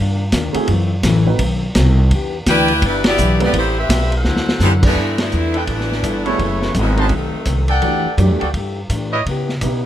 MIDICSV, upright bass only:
0, 0, Header, 1, 3, 480
1, 0, Start_track
1, 0, Key_signature, 1, "major"
1, 0, Tempo, 357143
1, 927, Time_signature, 4, 2, 24, 8
1, 13246, End_track
2, 0, Start_track
2, 0, Title_t, "Upright bass"
2, 0, Program_c, 0, 32
2, 0, Note_on_c, 0, 43, 71
2, 429, Note_off_c, 0, 43, 0
2, 434, Note_on_c, 0, 39, 91
2, 721, Note_off_c, 0, 39, 0
2, 913, Note_on_c, 0, 42, 79
2, 1380, Note_off_c, 0, 42, 0
2, 1388, Note_on_c, 0, 33, 114
2, 1856, Note_off_c, 0, 33, 0
2, 1864, Note_on_c, 0, 35, 87
2, 2338, Note_off_c, 0, 35, 0
2, 2354, Note_on_c, 0, 36, 106
2, 2822, Note_off_c, 0, 36, 0
2, 2832, Note_on_c, 0, 40, 79
2, 3300, Note_off_c, 0, 40, 0
2, 3311, Note_on_c, 0, 38, 97
2, 3779, Note_off_c, 0, 38, 0
2, 3790, Note_on_c, 0, 31, 80
2, 4258, Note_off_c, 0, 31, 0
2, 4281, Note_on_c, 0, 35, 100
2, 4743, Note_off_c, 0, 35, 0
2, 4748, Note_on_c, 0, 33, 83
2, 5215, Note_off_c, 0, 33, 0
2, 5234, Note_on_c, 0, 35, 104
2, 5698, Note_off_c, 0, 35, 0
2, 5707, Note_on_c, 0, 38, 74
2, 6170, Note_off_c, 0, 38, 0
2, 6178, Note_on_c, 0, 42, 94
2, 6650, Note_off_c, 0, 42, 0
2, 6661, Note_on_c, 0, 43, 66
2, 7131, Note_off_c, 0, 43, 0
2, 7166, Note_on_c, 0, 40, 87
2, 7618, Note_off_c, 0, 40, 0
2, 7626, Note_on_c, 0, 33, 71
2, 8095, Note_off_c, 0, 33, 0
2, 8105, Note_on_c, 0, 31, 78
2, 8575, Note_off_c, 0, 31, 0
2, 8585, Note_on_c, 0, 30, 75
2, 9056, Note_off_c, 0, 30, 0
2, 9069, Note_on_c, 0, 32, 103
2, 9532, Note_off_c, 0, 32, 0
2, 9540, Note_on_c, 0, 35, 67
2, 9830, Note_off_c, 0, 35, 0
2, 10025, Note_on_c, 0, 36, 90
2, 10498, Note_off_c, 0, 36, 0
2, 10507, Note_on_c, 0, 40, 73
2, 10795, Note_off_c, 0, 40, 0
2, 10988, Note_on_c, 0, 42, 105
2, 11159, Note_off_c, 0, 42, 0
2, 11159, Note_on_c, 0, 40, 49
2, 11308, Note_off_c, 0, 40, 0
2, 11316, Note_on_c, 0, 38, 66
2, 11469, Note_off_c, 0, 38, 0
2, 11474, Note_on_c, 0, 43, 67
2, 11946, Note_off_c, 0, 43, 0
2, 11955, Note_on_c, 0, 45, 85
2, 12428, Note_off_c, 0, 45, 0
2, 12445, Note_on_c, 0, 49, 77
2, 12914, Note_off_c, 0, 49, 0
2, 12927, Note_on_c, 0, 47, 96
2, 13246, Note_off_c, 0, 47, 0
2, 13246, End_track
3, 0, Start_track
3, 0, Title_t, "Muted upright bass strokes"
3, 731, Note_on_c, 9, 29, 43
3, 865, Note_off_c, 9, 29, 0
3, 9850, Note_on_c, 9, 29, 31
3, 9984, Note_off_c, 9, 29, 0
3, 10817, Note_on_c, 9, 29, 39
3, 10952, Note_off_c, 9, 29, 0
3, 13246, End_track
0, 0, End_of_file